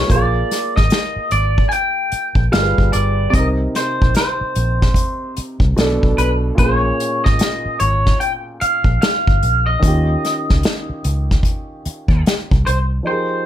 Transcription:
Already playing: F#3 E4 G#4 A4 B4
0.07 A#1 A#3 F4, kick, closed hi-hat
0.12 G#4 D5
0.16 F5
0.51 snare, closed hi-hat
0.76 G#1 D#5, kick, snare
0.90 snare, closed hi-hat
1.16 muted fingered electric bass stroke
1.31 G#1 D5, closed hi-hat
1.58 kick
1.69 G5 G#5, closed hi-hat
2.12 muted fingered electric bass stroke, closed hi-hat
2.35 A#1, kick
2.52 G1 G3 F4 G#4 F5, snare, closed hi-hat
2.56 A#4
2.63 B4
2.78 G1, kick
2.93 G1 D5, closed hi-hat
3.30 C3 C4 D5, kick, closed hi-hat
3.34 C2 D#4 D#5
3.39 A#4
3.75 C5, snare, closed hi-hat
4.02 A#1, kick
4.15 C5, snare, closed hi-hat
4.41 muted fingered electric bass stroke
4.55 A#1, closed hi-hat
4.82 kick, snare
4.94 kick, closed hi-hat
5.36 muted fingered electric bass stroke, closed hi-hat
5.60 C2, kick
5.76 B1 B2 B3 D4 A4, snare, closed hi-hat
6.03 B1, kick
6.18 B1 B4, closed hi-hat
6.55 A#2 A#3, kick, closed hi-hat
6.59 A#1 C#4 C5
6.63 G#4
6.76 C#5
7.00 closed hi-hat
7.24 G#1 D#5, kick, snare
7.39 snare, closed hi-hat
7.66 muted fingered electric bass stroke
7.80 G#1 C#5, closed hi-hat
8.06 kick, snare
8.20 G5, closed hi-hat
8.61 F5, muted fingered electric bass stroke, closed hi-hat
8.84 A#1, kick
9.02 F5, snare, closed hi-hat
9.27 G1, kick
9.43 A#1, closed hi-hat
9.66 D#5
9.79 D#2 D#3 C#4, kick, closed hi-hat
9.85 F4 G4
10.25 snare, closed hi-hat
10.49 C#2, kick, snare
10.63 snare, closed hi-hat
10.90 muted fingered electric bass stroke
11.04 C#2, closed hi-hat
11.31 kick, snare
11.43 kick, closed hi-hat
11.85 muted fingered electric bass stroke, closed hi-hat
12.08 D#2, kick
12.26 snare, closed hi-hat
12.51 C2, kick
12.66 C2 C5, closed hi-hat
13.03 F3 D#4
13.07 G4 G#4 C5
13.11 A#4

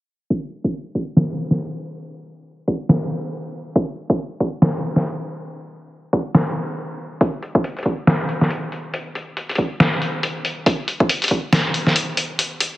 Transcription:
0.30 kick
0.64 kick
0.95 kick
1.17 snare
1.51 snare
2.68 kick
2.89 snare
3.76 kick
4.10 kick
4.40 kick
4.62 snare
4.96 snare
6.13 kick
6.35 snare
7.21 kick, closed hi-hat
7.43 closed hi-hat
7.55 kick
7.64 closed hi-hat
7.77 closed hi-hat
7.79 closed hi-hat
7.83 kick, closed hi-hat
8.07 snare, closed hi-hat
8.29 closed hi-hat
8.41 snare
8.50 closed hi-hat
8.72 closed hi-hat
8.94 closed hi-hat
9.15 closed hi-hat
9.37 closed hi-hat
9.49 closed hi-hat
9.51 closed hi-hat
9.55 kick, closed hi-hat
9.80 snare, closed hi-hat
10.02 closed hi-hat
10.23 closed hi-hat
10.45 closed hi-hat
10.66 kick, closed hi-hat
10.88 closed hi-hat
11.00 kick
11.09 closed hi-hat
11.22 closed hi-hat
11.24 closed hi-hat
11.28 kick, closed hi-hat
11.53 snare, closed hi-hat
11.74 closed hi-hat
11.87 snare
11.96 closed hi-hat
12.17 closed hi-hat
12.39 closed hi-hat
12.61 closed hi-hat

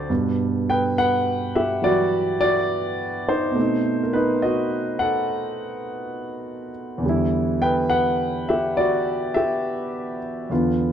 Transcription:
Already playing: D2 D3 F#3 C4 D4 F#4 A4 C5 D5
0.10 G2 B2
0.70 B4 G5
0.98 B4 F#5
1.55 G4 E5
1.82 E3 F#3 G3 F#4 D5
2.41 F#4 D5
3.29 D#4 C5
3.51 B2 A3
3.58 C4 D#4
4.03 A#4
4.13 D#4 B4
4.42 F#4 D#5
4.99 A4 F#5
6.98 E2 D3
7.06 G3 E4
7.62 B4 G5
7.90 B4 F#5
8.49 G4 E5
8.77 F#4 D5
9.34 G4 E5
10.50 E2 D3 B3 F4

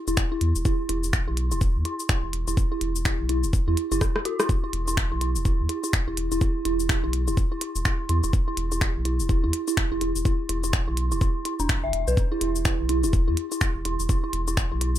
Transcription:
0.08 E1 E4, cabasa
0.17 finger snap, kick, cabasa
0.32 E4
0.41 E2, closed hi-hat
0.56 E1, cabasa
0.65 E4, kick, cabasa
0.89 E1 E4, closed hi-hat
1.04 cabasa
1.13 finger snap, kick, cabasa
1.28 B1 E4
1.37 closed hi-hat
1.52 E1 E4, cabasa
1.61 kick, cabasa
1.76 E2
1.85 E4, closed hi-hat
2.00 cabasa
2.09 E4, finger snap, kick, cabasa
2.23 E1
2.33 E1, closed hi-hat
2.48 E1 E4, cabasa
2.57 kick, cabasa
2.72 E4
2.81 E1, closed hi-hat
2.96 cabasa
3.05 E4, finger snap, kick, cabasa
3.20 B1
3.29 E4, closed hi-hat
3.44 E1, cabasa
3.53 kick, cabasa
3.68 E2 E4
3.77 closed hi-hat
3.92 F#1 E4, cabasa
4.01 kick, cross-stick, cabasa
4.16 cross-stick
4.25 F#4, closed hi-hat
4.40 E4, cross-stick, cabasa
4.49 E4, kick, cabasa
4.64 E4
4.73 E1, closed hi-hat
4.88 E4, cabasa
4.97 finger snap, kick, cabasa
5.12 B1 E4
5.21 E4, closed hi-hat
5.36 E1, cabasa
5.45 E4, kick, cabasa
5.60 E2
5.69 E4, closed hi-hat
5.84 E4, cabasa
5.93 finger snap, kick, cabasa
6.08 E1 E4
6.17 E1, closed hi-hat
6.32 E1 E4, cabasa
6.41 E4, kick, cabasa
6.65 E1 E4, closed hi-hat
6.80 cabasa
6.89 E4, finger snap, kick, cabasa
7.04 B1 E4
7.13 closed hi-hat
7.28 E1 E4, cabasa
7.37 kick, cabasa
7.52 E4
7.61 E4, closed hi-hat
7.76 E1, cabasa
7.85 E4, finger snap, kick, cabasa
8.09 E2 E4, closed hi-hat
8.24 E1 E4, cabasa
8.33 kick, cabasa
8.48 E4
8.57 E1, closed hi-hat
8.72 E4, cabasa
8.81 E4, finger snap, kick, cabasa
8.96 B1
9.05 E4, closed hi-hat
9.20 E1, cabasa
9.29 E4, kick, cabasa
9.44 E2 E4
9.53 closed hi-hat
9.68 E4, cabasa
9.77 finger snap, kick, cabasa
9.92 E1 E4
10.01 E1 E4, closed hi-hat
10.16 E1, cabasa
10.25 E4, kick, cabasa
10.49 E1 E4, closed hi-hat
10.64 E4, cabasa
10.73 finger snap, kick, cabasa
10.88 B1 E4
10.97 closed hi-hat
11.12 E1 E4, cabasa
11.21 E4, kick, cabasa
11.45 E4, closed hi-hat
11.60 E1 D4, cabasa
11.69 finger snap, kick, cabasa
11.84 G1 E5
11.93 E1, closed hi-hat
12.08 B1 B4, cabasa
12.17 kick, cabasa
12.32 E4
12.41 E1 E4, closed hi-hat
12.56 cabasa
12.65 E4, finger snap, kick, cabasa
12.80 B1
12.89 E4, closed hi-hat
13.04 E1 E4, cabasa
13.13 kick, cabasa
13.28 E2 E4
13.37 closed hi-hat
13.52 E4, cabasa
13.61 E4, finger snap, kick, cabasa
13.76 E1
13.85 E1 E4, closed hi-hat
14.00 E1, cabasa
14.09 E4, kick, cabasa
14.24 E4
14.33 E1, closed hi-hat
14.48 E4, cabasa
14.57 finger snap, kick, cabasa
14.72 B1 E4
14.81 E4, closed hi-hat
14.96 E1, cabasa

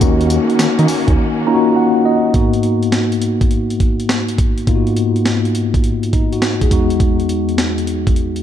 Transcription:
Already playing: F#4
0.01 D#2 D#3 A#3 C#4 D#4 F#4, kick, closed hi-hat, tambourine
0.21 closed hi-hat
0.30 closed hi-hat, tambourine
0.50 closed hi-hat
0.59 D#3, snare, closed hi-hat, tambourine
0.79 D#3, closed hi-hat
0.88 open hi-hat, tambourine
1.08 D#2, kick, closed hi-hat
1.46 A#3 C#4 D#4 F4 A#5
1.54 F#4
1.76 F#5
2.05 D#5
2.34 G#2 A#3 B3 D#4 F#4, kick, closed hi-hat
2.53 closed hi-hat
2.63 closed hi-hat
2.83 closed hi-hat
2.92 snare, closed hi-hat
3.12 closed hi-hat
3.22 closed hi-hat
3.41 kick, closed hi-hat
3.51 closed hi-hat
3.70 closed hi-hat
3.80 kick, closed hi-hat
4.00 closed hi-hat
4.09 snare, closed hi-hat
4.28 closed hi-hat
4.38 kick, closed hi-hat
4.58 closed hi-hat
4.66 G#2 A#3 B3 D#4 F4, kick, closed hi-hat
4.75 F#4
4.87 closed hi-hat
4.97 closed hi-hat
5.16 closed hi-hat
5.26 snare, closed hi-hat
5.45 closed hi-hat
5.55 closed hi-hat
5.74 kick, closed hi-hat
5.84 closed hi-hat
6.03 closed hi-hat
6.13 D#4, kick, closed hi-hat
6.33 F#4, closed hi-hat
6.42 snare, closed hi-hat
6.61 G#4, kick, closed hi-hat
6.71 E2 G#3 B3 D#4 F#4, kick, closed hi-hat
6.90 closed hi-hat
7.00 kick, closed hi-hat
7.20 closed hi-hat
7.29 closed hi-hat
7.49 closed hi-hat
7.58 snare, closed hi-hat
7.78 closed hi-hat
7.87 closed hi-hat
8.07 kick, closed hi-hat
8.16 closed hi-hat
8.36 closed hi-hat

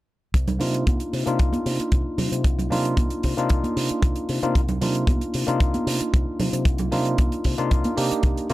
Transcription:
0.34 C2, kick, closed hi-hat
0.48 closed hi-hat, low conga
0.59 C3 A#3 D4 D#4 F4, open hi-hat, low conga
0.74 closed hi-hat
0.87 C2, kick, closed hi-hat, high conga
1.00 closed hi-hat
1.13 C3, open hi-hat
1.26 C3 A#3 D4 D#4 F4, closed hi-hat
1.39 C2, kick, closed hi-hat
1.53 closed hi-hat, high conga
1.66 C3, open hi-hat
1.79 muted fingered electric bass stroke, closed hi-hat
1.92 C2, kick, closed hi-hat
2.18 C3, open hi-hat, low conga
2.32 C3, closed hi-hat
2.44 C2, kick, closed hi-hat
2.59 closed hi-hat, low conga
2.70 C3 A#3 D4 D#4 F4, open hi-hat, low conga
2.85 closed hi-hat
2.97 C2, kick, closed hi-hat, high conga
3.10 closed hi-hat
3.23 C3, kick, open hi-hat
3.37 C3 A#3 D4 D#4 F4, closed hi-hat
3.49 C2, kick, closed hi-hat
3.64 closed hi-hat, high conga
3.76 C3, open hi-hat
3.89 muted fingered electric bass stroke, closed hi-hat
4.02 C2, kick, closed hi-hat
4.16 closed hi-hat
4.29 C3, open hi-hat
4.42 C3 A#3 D4 D#4 F4, closed hi-hat, high conga
4.55 C2, kick, closed hi-hat
4.68 closed hi-hat, low conga
4.81 C3 A#3 D4 D#4 F4, open hi-hat, low conga
4.95 closed hi-hat
5.07 C2, kick, closed hi-hat, high conga
5.21 closed hi-hat
5.34 C3, open hi-hat
5.46 C3 A#3 D4 D#4 F4, closed hi-hat
5.60 C2, kick, closed hi-hat
5.74 closed hi-hat, high conga
5.87 C3, open hi-hat
6.00 muted fingered electric bass stroke, closed hi-hat
6.14 C2, kick, closed hi-hat
6.39 C3, open hi-hat, low conga
6.53 C3, closed hi-hat
6.65 C2, kick, closed hi-hat
6.78 closed hi-hat, low conga
6.91 C3 A#3 D4 D#4 F4, open hi-hat, low conga
7.05 closed hi-hat
7.18 C2, kick, closed hi-hat, high conga
7.32 closed hi-hat
7.44 C3, kick, open hi-hat
7.58 C3 A#3 D4 D#4 F4, closed hi-hat
7.71 C2, kick, closed hi-hat
7.84 closed hi-hat, high conga
7.97 C3 A#3 D4 D#4 G4, open hi-hat
8.11 muted fingered electric bass stroke, closed hi-hat
8.23 C2, kick, closed hi-hat
8.37 closed hi-hat
8.50 C3 A#3 C4 D#4, open hi-hat

